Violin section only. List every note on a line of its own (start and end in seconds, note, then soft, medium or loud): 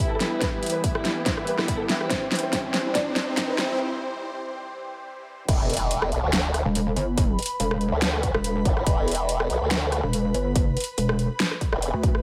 0.11 0.18 A4 medium
0.20 0.29 E4 medium
0.32 0.39 E4 medium
0.41 0.50 B4 medium
0.53 0.60 E4 medium
0.63 0.71 E4 medium
0.74 0.81 B4 medium
0.84 0.92 E4 medium
0.95 1.03 E4 medium
1.16 1.24 E4 medium
1.26 1.35 C5 medium
1.37 1.45 E4 medium
1.47 1.56 B4 medium
1.58 1.66 E4 medium
1.68 1.77 E4 medium
1.80 1.87 A4 medium
1.89 1.98 E4 medium
2.01 2.08 E4 medium
2.10 2.19 C5 loud
2.22 2.29 C4 medium
2.32 2.40 C4 medium
2.43 2.50 C5 medium
2.53 2.61 C4 medium
2.64 2.72 C4 medium
2.85 2.93 C4 medium
2.95 3.04 D5 medium
3.06 3.14 C4 medium
3.16 3.25 C5 loud
3.27 3.35 C4 medium
3.37 3.46 C4 medium
3.49 3.56 B4 medium
3.59 3.67 C4 medium
3.70 3.77 C4 medium